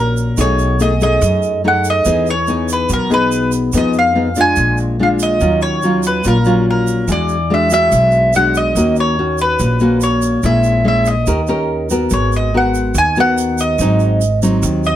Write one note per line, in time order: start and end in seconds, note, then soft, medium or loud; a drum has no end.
0.00 0.34 A#1 loud
0.00 0.35 A#2 soft
0.00 0.34 C#4 medium
0.00 0.34 F#4 medium
0.00 0.35 A#4 medium
0.00 0.40 A#4 medium
0.17 shaker medium
0.37 1.18 B1 loud
0.37 1.19 B2 medium
0.37 0.76 A3 medium
0.37 0.76 D#4 medium
0.37 0.77 G#4 medium
0.37 0.81 C#5 medium
0.37 shaker medium
0.59 shaker soft
0.80 0.92 A3 medium
0.80 0.92 D#4 medium
0.80 0.92 G#4 medium
0.80 1.02 D#5 medium
0.80 shaker soft
1.01 1.60 A3 medium
1.01 1.61 D#4 medium
1.01 1.61 G#4 medium
1.01 1.61 D#5 medium
1.01 shaker medium
1.22 2.01 F#2 loud
1.22 2.04 F#2 medium
1.22 shaker medium
1.42 shaker soft
1.64 2.04 A3 medium
1.64 2.04 D#4 medium
1.64 2.04 G#4 medium
1.64 1.87 F#5 medium
1.84 shaker medium
1.90 2.30 D#5 medium
2.05 2.85 E2 medium
2.05 2.87 E3 medium
2.05 2.32 B3 medium
2.05 2.33 D#4 medium
2.05 2.33 G#4 medium
2.05 shaker medium
2.27 2.71 C#5 medium
2.27 shaker soft
2.47 2.89 B3 medium
2.47 2.89 D#4 medium
2.47 2.89 G#4 medium
2.47 shaker soft
2.69 shaker medium
2.73 2.92 B4 medium
2.89 3.69 B1 medium
2.89 3.71 B2 medium
2.89 shaker medium
2.93 3.13 A#4 medium
3.10 3.69 B3 medium
3.10 3.70 D#4 medium
3.10 3.70 G#4 medium
3.10 3.51 B4 medium
3.10 shaker soft
3.32 shaker medium
3.52 shaker medium
3.73 4.53 F2 loud
3.73 4.36 F3 medium
3.73 4.12 B3 medium
3.73 4.12 D#4 medium
3.73 4.13 G#4 medium
3.73 shaker medium
3.78 3.95 D#5 medium
3.93 shaker soft
3.99 4.39 F5 medium
4.15 4.27 B3 soft
4.15 4.27 D#4 medium
4.15 4.28 G#4 medium
4.36 4.96 G#3 medium
4.36 4.96 D4 medium
4.36 4.96 F4 medium
4.36 shaker medium
4.41 4.77 G#5 loud
4.56 5.37 A#1 medium
4.56 5.39 A#2 medium
4.56 shaker medium
4.77 shaker soft
4.99 5.39 G#3 medium
4.99 5.39 D4 medium
4.99 5.40 F4 medium
4.99 5.08 F5 medium
5.19 5.62 D#5 medium
5.19 shaker medium
5.40 6.20 D#2 medium
5.40 6.23 D#3 medium
5.40 5.79 F#3 medium
5.40 5.79 C#4 medium
5.40 5.80 F4 medium
5.40 shaker medium
5.61 6.01 C#5 medium
5.61 shaker soft
5.82 6.22 F#3 soft
5.82 6.22 C#4 soft
5.82 6.22 F4 medium
5.82 shaker soft
6.03 6.27 B4 medium
6.03 shaker medium
6.24 7.04 A#1 medium
6.24 7.06 A#2 medium
6.24 6.37 F#3 medium
6.24 6.37 C#4 soft
6.24 6.38 F4 medium
6.24 6.65 A#4 medium
6.24 shaker medium
6.45 7.05 F#3 medium
6.45 7.05 C#4 medium
6.45 7.05 F4 medium
6.45 shaker soft
6.70 7.11 A#4 medium
6.87 shaker medium
7.08 7.88 E2 medium
7.08 7.90 E3 medium
7.08 7.35 G#3 medium
7.08 7.36 D4 medium
7.08 7.36 F#4 medium
7.08 shaker medium
7.12 7.53 D5 medium
7.29 shaker soft
7.50 7.68 G#3 medium
7.50 7.68 D4 soft
7.50 7.68 F#4 medium
7.50 7.72 E5 medium
7.70 8.31 G#3 medium
7.70 8.31 D4 medium
7.70 8.31 F#4 medium
7.70 8.36 E5 medium
7.70 shaker medium
7.92 8.72 B1 medium
7.92 8.74 B2 medium
7.92 shaker medium
8.12 shaker soft
8.33 8.75 G#3 medium
8.33 8.75 D4 medium
8.33 8.75 F#4 medium
8.33 8.57 F#5 medium
8.33 shaker medium
8.55 8.95 D#5 medium
8.55 shaker medium
8.75 9.55 D#2 medium
8.75 9.58 D#3 medium
8.75 9.15 A#3 soft
8.75 9.15 C#4 medium
8.75 9.15 F#4 medium
8.75 shaker medium
8.96 shaker soft
9.00 9.41 C#5 medium
9.19 9.78 C#4 medium
9.19 9.78 F#4 medium
9.38 10.03 B4 medium
9.38 shaker medium
9.59 10.39 A#1 medium
9.59 10.42 A#2 medium
9.59 shaker medium
9.80 10.40 A#3 medium
9.80 10.40 C#4 medium
9.80 10.40 F#4 medium
9.80 shaker soft
10.01 10.46 C#5 medium
10.01 shaker medium
10.22 shaker medium
10.43 11.23 A#1 loud
10.43 11.25 A#2 medium
10.43 10.82 G#3 medium
10.43 10.82 C#4 medium
10.43 10.83 E4 medium
10.43 10.87 E5 medium
10.43 shaker medium
10.63 shaker soft
10.84 11.13 G#3 medium
10.84 11.13 C#4 soft
10.84 11.14 E4 medium
10.84 11.08 E5 medium
11.05 11.87 D#5 medium
11.05 shaker medium
11.27 12.07 D#2 loud
11.27 12.09 D#3 medium
11.27 11.40 C#4 medium
11.27 11.40 G4 medium
11.27 11.40 A#4 medium
11.27 shaker medium
11.47 11.87 C#4 medium
11.47 11.87 G4 medium
11.47 11.87 A#4 medium
11.47 shaker soft
11.90 12.50 B3 medium
11.90 12.50 F#4 medium
11.90 12.50 A#4 medium
11.90 shaker medium
12.10 12.91 G#1 medium
12.10 12.93 G#3 medium
12.10 12.34 C#5 medium
12.10 shaker medium
12.32 shaker soft
12.36 12.54 D#5 medium
12.54 12.95 B3 medium
12.54 12.96 F#4 medium
12.54 12.96 A#4 medium
12.54 12.98 F#5 medium
12.74 shaker medium
12.95 13.75 D#2 loud
12.95 13.77 D#3 medium
12.95 13.18 G#5 loud
12.95 shaker medium
13.16 13.76 B3 medium
13.16 13.76 F#4 medium
13.16 13.76 A#4 medium
13.16 shaker soft
13.20 13.61 F#5 loud
13.38 shaker medium
13.58 14.39 D#5 medium
13.58 shaker medium
13.79 14.59 G#1 medium
13.79 14.61 G#2 medium
13.79 14.21 F#3 medium
13.79 14.21 C4 medium
13.79 14.22 D#4 medium
13.79 shaker medium
14.00 shaker soft
14.21 shaker soft
14.42 14.96 F#3 medium
14.42 14.96 C4 medium
14.42 14.96 D#4 medium
14.42 shaker medium
14.63 14.96 D#2 loud
14.63 14.96 D#3 soft
14.63 shaker medium
14.84 14.96 D#5 medium
14.84 shaker soft